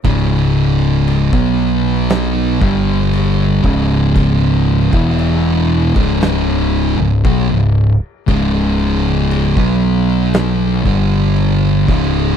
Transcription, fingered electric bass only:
X:1
M:4/4
L:1/16
Q:1/4=58
K:C#m
V:1 name="Fingered electric bass" clef=bass
C,,,4- C,,, B,,,4- B,,, =G,,,4 C,,,2- | C,,,3 E,,,4 C,,,4 C,,, B,,, C,,,2 z | C,,,4- C,,, B,,,4- B,,, =G,,,4 C,,,2 |]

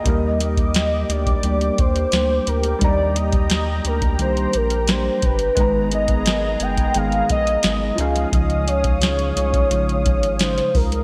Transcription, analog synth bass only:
X:1
M:4/4
L:1/8
Q:1/4=87
K:Eb
V:1 name="Analog synth bass" clef=bass
E,,3 D,, D,, E,, D,, D,, | E,,3 D,, C,, B,,,2 G,,, | A,,,3 G,,, A,,, B,,, A,,, _D,, | _D,,3 C,, B,,, A,,,2 D,, |]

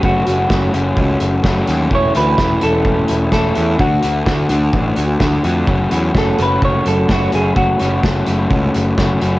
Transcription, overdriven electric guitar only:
X:1
M:4/4
L:1/8
Q:1/4=128
K:F#m
V:1 name="Overdriven electric guitar"
[F,A,CF] [A,CF] [F,A,CF] [A,CF]3 [F,A,CF] [A,CF] | [E,A,CE] [A,CE] [E,A,CE] [A,CE]3 [E,A,CE] [A,CE] | [D,A,DF] [A,DF] [D,A,DF] [A,DF]3 [D,A,DF] [A,DF] | [F,A,CF] [A,CF] [F,A,CF] [A,CF]3 [F,A,CF] [A,CF] |
[F,A,CF] [A,CF] [F,A,CF] [A,CF]3 [F,A,CF] [A,CF] |]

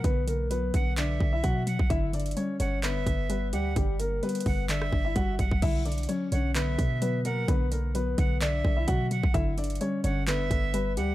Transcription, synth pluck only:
X:1
M:4/4
L:1/8
Q:1/4=129
K:Bm
V:1 name="Synth pluck" clef=bass
[D,F,] D, F, D, D, D, F, F, | D, D, G, D, D, D, G, G, | D, D, G, D, D, D, G, G, | D, D, F, D, D, D, F, F, |
D, D, F, D, D, D, F, F, | D, D, G, D, D, D, G, G, |]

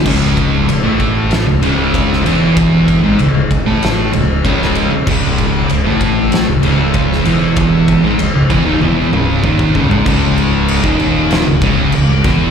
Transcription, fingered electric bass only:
X:1
M:4/4
L:1/16
Q:1/4=96
K:C#m
V:1 name="Fingered electric bass" clef=bass
C,,,4 C,,, A,,,4 C,,, C,,,4 E,,,2- | E,,,3 G,,, C,,, C,,,2 A,,,3 C,,,2 C,,,3 z | C,,,4 C,,, A,,,4 C,,, C,,,4 E,,,2- | E,,,3 G,,, C,,, C,,, E,,, D,,, E,,,2 C,,,2 D,,,2 C,,, G,,, |
C,,,4- C,,, D,,,4 C,,, C,,,2 C,,, C,,, E,,,2 |]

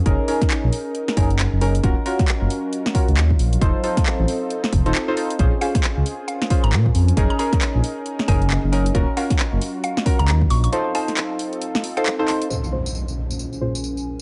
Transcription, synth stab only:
X:1
M:4/4
L:1/16
Q:"Swing 16ths" 1/4=135
K:Bbm
V:1 name="Synth stab"
[DEAB]2 [DEAB]8 [DEAB] z3 [DEAB] z | [DFGB] z [DFGB] z6 z [DFGB] z4 z | [EF=Ac]2 [EFAc]8 z [EFAc] z [EFAc] [EFAc] z | [DFAc] z [DFAc] z6 z [DFAc] z4 z |
[DEAB]2 [DEAB]8 [DEAB] z3 [DEAB] z | [DFGB] z [DFGB] z6 z [DFGB] z4 z | [EF=Ac]2 [EFAc]8 z [EFAc] z [EFAc] [EFAc] z | [B,,DFAc] z [B,,DFAc] z6 z [B,,DFAc] z4 z |]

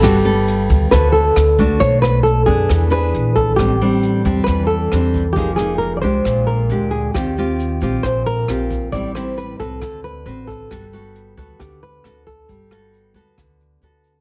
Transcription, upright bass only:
X:1
M:4/4
L:1/8
Q:1/4=135
K:G
V:1 name="Upright bass" clef=bass
G,,,3 D,, D,,2 D,,2 | B,,,3 F,, E,,2 _B,,,2 | A,,,3 E,, E,,2 E,,2 | =F,,,3 C,, _B,,,2 D,,2 |
_E,,3 _B,,, B,,,2 B,,,2 | A,,,3 C,, D,,2 A,,,2 | G,,,3 D,, D,,2 D,,2 | G,,,3 D,, D,,2 D,,2 |]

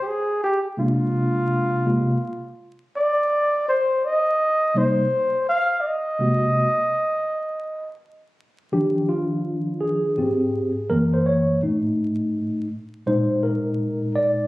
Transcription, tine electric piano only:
X:1
M:4/4
L:1/16
Q:"Swing 16ths" 1/4=83
K:Eb
V:1 name="Tine electric piano"
z4 [C,A,B,D]6 [C,A,B,F]2 z4 | z8 z2 [C,G,B,E]2 z4 | z2 [C,A,B,_G]2 z12 | G2 F4 A6 B c _d2 |
z8 c2 B4 d2 |]
V:2 name="Tine electric piano" clef=bass
z16 | z16 | z16 | [E,F,D]8 [A,,CG]2 z2 [_G,,_F,B,]4 |
[=A,,=A,E]6 z2 [B,,_A,E]8 |]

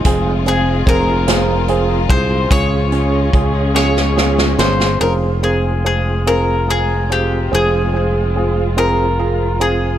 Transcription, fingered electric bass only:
X:1
M:6/8
L:1/8
Q:3/8=48
K:Fm
V:1 name="Fingered electric bass" clef=bass
F,,,2 F,,,3 C,, | D,,2 D,,3 G,,, | F,,,6 | F,,,6 |]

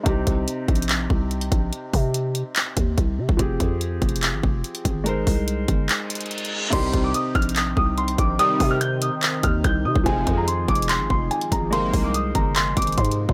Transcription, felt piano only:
X:1
M:4/4
L:1/8
Q:1/4=144
K:Cm
V:1 name="Felt piano"
[C,CEG]8- | [C,CEG]8 | [F,CGA]8 | [A,EBc]8 |
[C,CEG]8- | [C,CEG]8 | [F,CFA]8 | [A,EBc]8 |]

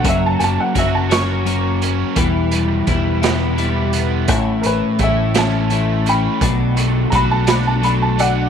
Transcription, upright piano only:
X:1
M:6/8
L:1/16
Q:3/8=57
K:Edor
V:1 name="Upright piano"
e a [^ga] f e a c'6- | c'6 z6 | z2 [_B=B]2 e2 a4 [gb]2- | [gb]2 z2 [_b=b] a b a b a [df]2 |]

